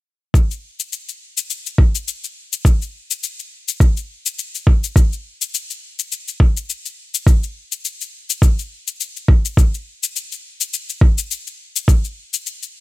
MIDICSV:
0, 0, Header, 1, 2, 480
1, 0, Start_track
1, 0, Tempo, 576923
1, 283, Time_signature, 4, 2, 24, 8
1, 10653, End_track
2, 0, Start_track
2, 0, Title_t, "Drums"
2, 283, Note_on_c, 9, 36, 98
2, 291, Note_on_c, 9, 69, 46
2, 366, Note_off_c, 9, 36, 0
2, 374, Note_off_c, 9, 69, 0
2, 424, Note_on_c, 9, 69, 29
2, 507, Note_off_c, 9, 69, 0
2, 663, Note_on_c, 9, 69, 58
2, 746, Note_off_c, 9, 69, 0
2, 771, Note_on_c, 9, 69, 49
2, 854, Note_off_c, 9, 69, 0
2, 905, Note_on_c, 9, 69, 28
2, 988, Note_off_c, 9, 69, 0
2, 1142, Note_on_c, 9, 69, 54
2, 1225, Note_off_c, 9, 69, 0
2, 1249, Note_on_c, 9, 69, 43
2, 1332, Note_off_c, 9, 69, 0
2, 1383, Note_on_c, 9, 69, 31
2, 1466, Note_off_c, 9, 69, 0
2, 1484, Note_on_c, 9, 36, 84
2, 1567, Note_off_c, 9, 36, 0
2, 1623, Note_on_c, 9, 69, 55
2, 1706, Note_off_c, 9, 69, 0
2, 1729, Note_on_c, 9, 69, 50
2, 1813, Note_off_c, 9, 69, 0
2, 1863, Note_on_c, 9, 69, 29
2, 1946, Note_off_c, 9, 69, 0
2, 2103, Note_on_c, 9, 69, 61
2, 2186, Note_off_c, 9, 69, 0
2, 2204, Note_on_c, 9, 36, 105
2, 2211, Note_on_c, 9, 69, 49
2, 2287, Note_off_c, 9, 36, 0
2, 2294, Note_off_c, 9, 69, 0
2, 2344, Note_on_c, 9, 69, 29
2, 2427, Note_off_c, 9, 69, 0
2, 2584, Note_on_c, 9, 69, 58
2, 2668, Note_off_c, 9, 69, 0
2, 2690, Note_on_c, 9, 69, 52
2, 2774, Note_off_c, 9, 69, 0
2, 2824, Note_on_c, 9, 69, 30
2, 2907, Note_off_c, 9, 69, 0
2, 3064, Note_on_c, 9, 69, 56
2, 3147, Note_off_c, 9, 69, 0
2, 3164, Note_on_c, 9, 36, 99
2, 3170, Note_on_c, 9, 69, 46
2, 3247, Note_off_c, 9, 36, 0
2, 3253, Note_off_c, 9, 69, 0
2, 3302, Note_on_c, 9, 69, 32
2, 3385, Note_off_c, 9, 69, 0
2, 3543, Note_on_c, 9, 69, 59
2, 3626, Note_off_c, 9, 69, 0
2, 3651, Note_on_c, 9, 69, 51
2, 3734, Note_off_c, 9, 69, 0
2, 3784, Note_on_c, 9, 69, 30
2, 3867, Note_off_c, 9, 69, 0
2, 3884, Note_on_c, 9, 36, 94
2, 3967, Note_off_c, 9, 36, 0
2, 4025, Note_on_c, 9, 69, 60
2, 4108, Note_off_c, 9, 69, 0
2, 4125, Note_on_c, 9, 36, 104
2, 4132, Note_on_c, 9, 69, 52
2, 4208, Note_off_c, 9, 36, 0
2, 4215, Note_off_c, 9, 69, 0
2, 4266, Note_on_c, 9, 69, 29
2, 4349, Note_off_c, 9, 69, 0
2, 4505, Note_on_c, 9, 69, 63
2, 4588, Note_off_c, 9, 69, 0
2, 4612, Note_on_c, 9, 69, 53
2, 4696, Note_off_c, 9, 69, 0
2, 4745, Note_on_c, 9, 69, 30
2, 4828, Note_off_c, 9, 69, 0
2, 4985, Note_on_c, 9, 69, 59
2, 5068, Note_off_c, 9, 69, 0
2, 5091, Note_on_c, 9, 69, 47
2, 5174, Note_off_c, 9, 69, 0
2, 5224, Note_on_c, 9, 69, 33
2, 5308, Note_off_c, 9, 69, 0
2, 5325, Note_on_c, 9, 36, 92
2, 5408, Note_off_c, 9, 36, 0
2, 5465, Note_on_c, 9, 69, 60
2, 5548, Note_off_c, 9, 69, 0
2, 5571, Note_on_c, 9, 69, 51
2, 5654, Note_off_c, 9, 69, 0
2, 5704, Note_on_c, 9, 69, 30
2, 5787, Note_off_c, 9, 69, 0
2, 5944, Note_on_c, 9, 69, 63
2, 6027, Note_off_c, 9, 69, 0
2, 6045, Note_on_c, 9, 36, 111
2, 6052, Note_on_c, 9, 69, 47
2, 6128, Note_off_c, 9, 36, 0
2, 6136, Note_off_c, 9, 69, 0
2, 6184, Note_on_c, 9, 69, 29
2, 6267, Note_off_c, 9, 69, 0
2, 6423, Note_on_c, 9, 69, 62
2, 6506, Note_off_c, 9, 69, 0
2, 6530, Note_on_c, 9, 69, 52
2, 6613, Note_off_c, 9, 69, 0
2, 6664, Note_on_c, 9, 69, 30
2, 6747, Note_off_c, 9, 69, 0
2, 6904, Note_on_c, 9, 69, 56
2, 6987, Note_off_c, 9, 69, 0
2, 7005, Note_on_c, 9, 36, 96
2, 7012, Note_on_c, 9, 69, 49
2, 7088, Note_off_c, 9, 36, 0
2, 7095, Note_off_c, 9, 69, 0
2, 7146, Note_on_c, 9, 69, 33
2, 7229, Note_off_c, 9, 69, 0
2, 7384, Note_on_c, 9, 69, 61
2, 7467, Note_off_c, 9, 69, 0
2, 7492, Note_on_c, 9, 69, 52
2, 7575, Note_off_c, 9, 69, 0
2, 7625, Note_on_c, 9, 69, 29
2, 7709, Note_off_c, 9, 69, 0
2, 7724, Note_on_c, 9, 36, 91
2, 7807, Note_off_c, 9, 36, 0
2, 7864, Note_on_c, 9, 69, 65
2, 7948, Note_off_c, 9, 69, 0
2, 7964, Note_on_c, 9, 36, 97
2, 7973, Note_on_c, 9, 69, 49
2, 8047, Note_off_c, 9, 36, 0
2, 8056, Note_off_c, 9, 69, 0
2, 8105, Note_on_c, 9, 69, 30
2, 8189, Note_off_c, 9, 69, 0
2, 8346, Note_on_c, 9, 69, 59
2, 8429, Note_off_c, 9, 69, 0
2, 8454, Note_on_c, 9, 69, 49
2, 8537, Note_off_c, 9, 69, 0
2, 8586, Note_on_c, 9, 69, 27
2, 8669, Note_off_c, 9, 69, 0
2, 8825, Note_on_c, 9, 69, 57
2, 8908, Note_off_c, 9, 69, 0
2, 8931, Note_on_c, 9, 69, 46
2, 9014, Note_off_c, 9, 69, 0
2, 9064, Note_on_c, 9, 69, 32
2, 9147, Note_off_c, 9, 69, 0
2, 9163, Note_on_c, 9, 36, 92
2, 9247, Note_off_c, 9, 36, 0
2, 9301, Note_on_c, 9, 69, 62
2, 9385, Note_off_c, 9, 69, 0
2, 9410, Note_on_c, 9, 69, 50
2, 9493, Note_off_c, 9, 69, 0
2, 9543, Note_on_c, 9, 69, 28
2, 9627, Note_off_c, 9, 69, 0
2, 9783, Note_on_c, 9, 69, 60
2, 9867, Note_off_c, 9, 69, 0
2, 9884, Note_on_c, 9, 36, 100
2, 9889, Note_on_c, 9, 69, 46
2, 9967, Note_off_c, 9, 36, 0
2, 9973, Note_off_c, 9, 69, 0
2, 10021, Note_on_c, 9, 69, 29
2, 10104, Note_off_c, 9, 69, 0
2, 10263, Note_on_c, 9, 69, 53
2, 10346, Note_off_c, 9, 69, 0
2, 10370, Note_on_c, 9, 69, 45
2, 10454, Note_off_c, 9, 69, 0
2, 10506, Note_on_c, 9, 69, 28
2, 10589, Note_off_c, 9, 69, 0
2, 10653, End_track
0, 0, End_of_file